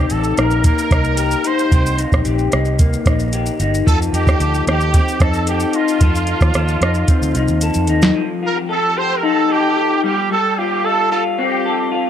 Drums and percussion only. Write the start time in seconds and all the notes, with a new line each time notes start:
0.10 closed hi-hat, shaker
0.24 shaker
0.37 cross-stick, closed hi-hat, shaker
0.51 shaker
0.64 kick, closed hi-hat, shaker
0.78 shaker
0.91 kick, cross-stick, closed hi-hat, shaker
1.04 shaker
1.17 closed hi-hat, shaker
1.31 shaker
1.44 closed hi-hat, shaker
1.59 shaker
1.72 kick, closed hi-hat, shaker
1.86 shaker
1.99 closed hi-hat, shaker
2.12 kick, cross-stick, shaker
2.25 closed hi-hat, shaker
2.39 shaker
2.52 cross-stick, closed hi-hat, shaker
2.65 shaker
2.79 kick, closed hi-hat, shaker
2.93 shaker
3.06 kick, cross-stick, closed hi-hat, shaker
3.19 shaker
3.33 closed hi-hat, shaker
3.46 shaker
3.60 closed hi-hat, shaker
3.74 shaker
3.87 kick, closed hi-hat, shaker
4.02 shaker
4.14 closed hi-hat, shaker
4.27 kick, cross-stick, shaker
4.40 closed hi-hat, shaker
4.54 shaker
4.67 cross-stick, closed hi-hat, shaker
4.81 shaker
4.94 kick, closed hi-hat, shaker
5.08 shaker
5.20 kick, cross-stick, closed hi-hat, shaker
5.34 shaker
5.47 closed hi-hat, shaker
5.60 shaker
5.73 closed hi-hat, shaker
5.88 shaker
6.01 kick, closed hi-hat, shaker
6.15 shaker
6.27 closed hi-hat, shaker
6.41 kick, cross-stick, shaker
6.54 cross-stick, closed hi-hat, shaker
6.68 shaker
6.82 cross-stick, closed hi-hat, shaker
6.94 shaker
7.08 kick, closed hi-hat, shaker
7.22 shaker
7.35 closed hi-hat, shaker
7.48 shaker
7.61 closed hi-hat, shaker
7.74 shaker
7.87 closed hi-hat, shaker
8.02 snare, shaker